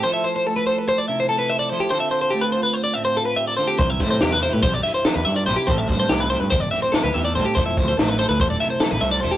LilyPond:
<<
  \new Staff \with { instrumentName = "Clean electric guitar" } { \time 9/8 \key f \lydian \tempo 4. = 96 c''16 e''16 c''16 c''16 a'16 b'16 c''16 b'16 c''16 d''16 e''16 c''16 a'16 b'16 e''16 d''16 c''16 g'16 | c''16 e''16 c''16 c''16 g'16 b'16 c''16 b'16 c''16 d''16 e''16 c''16 a'16 b'16 e''16 d''16 c''16 g'16 | c''16 e''16 c''16 c''16 g'16 b'16 c''16 b'16 c''16 d''16 e''16 c''16 a'16 b'16 e''16 d''16 c''16 g'16 | c''16 e''16 c''16 c''16 g'16 b'16 c''16 b'16 c''16 d''16 e''16 c''16 a'16 b'16 e''16 d''16 c''16 g'16 |
c''16 e''16 c''16 c''16 a'16 b'16 c''16 b'16 c''16 d''16 e''16 c''16 a'16 b'16 e''16 d''16 c''16 g'16 | }
  \new Staff \with { instrumentName = "Clean electric guitar" } { \time 9/8 \key f \lydian << { <e' a' c''>4. a'4 e'8 a'8 c''8 <e' a' c''>8 | <c' f' a'>4. f'4 c'8 f'8 g'16 a'16 <c' f' a'>8 | <e' g' b'>4. e'16 g'8. e'8 g'8 d''8 <e' g' b'>8 | <c' g' a'>4. g'4 c'8 e'16 g'16 g'16 a'16 <c' g' a'>8 |
<e' a' c''>4. a'4 e'8 a'8 c''8 <e' a' c''>8 | } \\ { f4 a4. c4. f8 | d4 a4. a,4. d8 | c4 g4. g,4. c8 | a,4 a4. e4. a,8 |
f4 a4. c4. f8 | } >> }
  \new Staff \with { instrumentName = "Fingered electric bass" } { \clef bass \time 9/8 \key f \lydian r1 r8 | r1 r8 | c,8 a,8 e,8. a,16 b,,8 r8. e,16 g,8 b,,16 r16 | a,,8 g,8 c,8. g,16 g,,8 r8. d,16 e,8 c,16 r16 |
f,,8 d,8 a,,8. d,16 e,,8 r8. a,,16 c,8 e,,16 r16 | }
  \new DrumStaff \with { instrumentName = "Drums" } \drummode { \time 9/8 r4 r4 r4 r4. | r4 r4 r4 r4. | <hh bd>8 <hh bd sn>8 <hh sn>8 hh8 <hh bd>8 hh8 <hh sn>8 hh8 hh8 | <hh bd>8 <hh bd>8 <hh sn>8 hh8 <hh bd>8 hh8 <hh sn>8 hh8 hh8 |
<hh bd>8 <hh bd>8 <hh sn>8 hh8 <hh bd>8 hh8 <hh sn>8 hh8 hh8 | }
>>